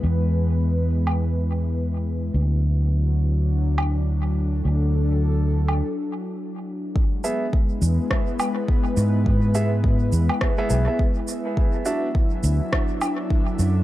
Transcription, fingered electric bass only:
X:1
M:4/4
L:1/8
Q:"Swing 16ths" 1/4=104
K:Emix
V:1 name="Fingered electric bass" clef=bass
E,,8 | D,,8 | D,,4 z4 | z3 E,, z3 G,,- |
G,,3 E,, z B,,, z2 | z3 D,, z3 F,, |]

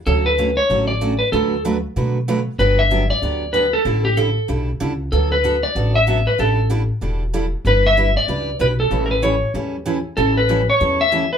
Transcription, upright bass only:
X:1
M:4/4
L:1/8
Q:"Swing" 1/4=190
K:D
V:1 name="Upright bass" clef=bass
D,,4 A,,,4 | D,,4 B,,4 | G,,,4 D,,4 | A,,,4 B,,,2 C,,2 |
D,,4 A,,,4 | A,,,4 E,,,4 | G,,,4 C,,2 B,,,2 | A,,,4 E,,4 |
A,,,4 E,,4 |]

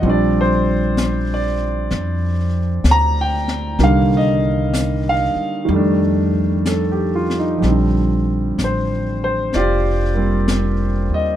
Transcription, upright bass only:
X:1
M:4/4
L:1/8
Q:"Swing" 1/4=63
K:Bb
V:1 name="Upright bass" clef=bass
B,,,4 F,,2 D,,2 | C,,3 z F,,4 | B,,,2 A,,,2 F,,,3 E,, |]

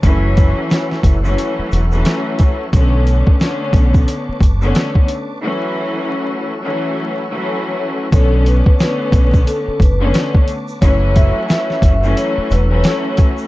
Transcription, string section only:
X:1
M:4/4
L:1/16
Q:"Swing 16ths" 1/4=89
K:Bm
V:1 name="String section"
[E,F,A,C]6 z [E,F,A,C]4 [E,F,A,C]4- [E,F,A,C] | [D,A,B,C]4 [D,A,B,C]6 z [D,A,B,C]3 z2 | [E,F,A,C]6 z [E,F,A,C]4 [E,F,A,C]4- [E,F,A,C] | [D,A,B,C]4 [D,A,B,C]6 z [D,A,B,C]3 z2 |
[E,F,A,C]6 z [E,F,A,C]4 [E,F,A,C]4- [E,F,A,C] |]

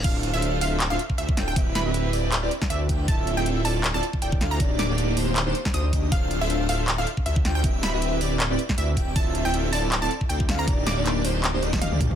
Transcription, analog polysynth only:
X:1
M:4/4
L:1/16
Q:"Swing 16ths" 1/4=158
K:Ddor
V:1 name="Analog polysynth"
[DFAcf]3 [DFAcf]3 [DFAce]2 z [DFAce] z2 [DFAce] z [DFAcg]2 | [CEGBe]3 [CEGBe]3 [CEGBd]2 z [CEGBd] z2 [CEGBd] z [CEGBg]2 | [CEFAe]3 [CEFAe]3 [CEFAd]2 z [CEFAd] z2 [CEFAd] z [CEFAf]2 | [_B,D_EGd]3 [B,DEGd]3 [B,DEGc]2 z [B,DEGc] z2 [B,DEGc] z [B,DEG_e]2 |
[DFAcf]3 [DFAcf]3 [DFAce]2 z [DFAce] z2 [DFAce] z [DFAcg]2 | [CEGBe]3 [CEGBe]3 [CEGBd]2 z [CEGBd] z2 [CEGBd] z [CEGBg]2 | [CEFAe]3 [CEFAe]3 [CEFAd]2 z [CEFAd] z2 [CEFAd] z [CEFAf]2 | [_B,D_EGd]3 [B,DEGd]3 [B,DEGc]2 z [B,DEGc] [B,DEG_e]3 [B,DEGd]2 z |]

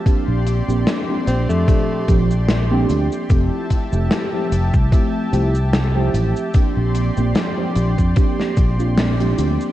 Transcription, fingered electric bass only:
X:1
M:4/4
L:1/16
Q:"Swing 16ths" 1/4=74
K:Bblyd
V:1 name="Fingered electric bass" clef=bass
z B,,,2 B,,, z2 B,,, F,, z2 B,,,4 D,, z | F,,, z2 F,,, z2 F,,, C,, z2 C,,4 A,,, z | z B,,,2 B,,, z2 B,,, F,, z2 B,,,4 D,, z |]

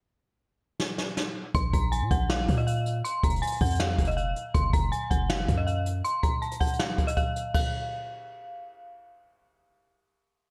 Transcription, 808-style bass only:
X:1
M:4/4
L:1/16
Q:1/4=160
K:Gblyd
V:1 name="808-style bass" clef=bass
z16 | B,,,2 B,,,3 B,, B,,,4 B,,6 | z2 F,,,2 z2 F,,4 F,,,4 z2 | G,,,2 G,,,2 z2 G,,,4 G,,6 |
z16 | z16 | z16 |]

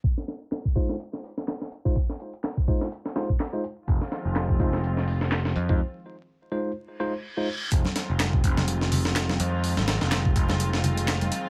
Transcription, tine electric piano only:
X:1
M:4/4
L:1/16
Q:"Swing 16ths" 1/4=125
K:Fm
V:1 name="Tine electric piano"
z6 [A,EFc]2 z6 z [A,EFc] | z6 [A,EFc]2 z2 [A,EFc] z2 [A,EFc] z2 | z6 [A,EFc]2 z6 z [A,EFc] | z6 [A,EFc]2 z2 [A,EFc] z2 [A,EFc] z2 |
z16 | z16 |]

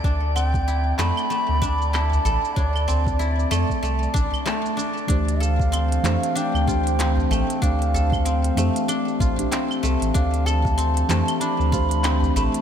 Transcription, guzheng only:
X:1
M:4/4
L:1/16
Q:"Swing 16ths" 1/4=95
K:Ddor
V:1 name="Guzheng"
D z C2 E z A,2 A,2 D z E z A z | D z C2 E z A,2 A,2 D2 A, z D2 | D2 A2 C2 A, z D2 F2 C2 A, z | D2 A2 C2 A, z D2 F2 C2 A, z |
D2 A2 C2 A, z D2 F2 C2 A, z |]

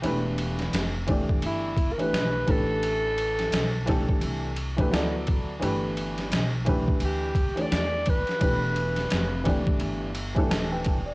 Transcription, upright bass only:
X:1
M:4/4
L:1/16
Q:"Swing 16ths" 1/4=86
K:Gmix
V:1 name="Upright bass" clef=bass
E,,,4 F,,,3 z G,,,4 B,,,2 A,,,2- | A,,,4 B,,,3 z C,,4 D,,4 | G,,,4 B,,,3 z D,,4 E,,3 z | E,,,4 F,,,3 z G,,,4 _E,,,4 |]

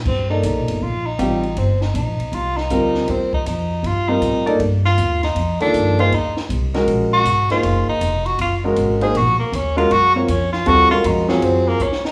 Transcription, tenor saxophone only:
X:1
M:4/4
L:1/8
Q:"Swing" 1/4=158
K:Eblyd
V:1 name="Tenor saxophone"
C E E2 F E3 | C E E2 F E3 | C E E2 F E3 | z F2 E2 D2 F |
E z4 _G2 F- | F E2 _G F z2 _A | _G B, _D F G B, D F | _G F E _D C B, D E |]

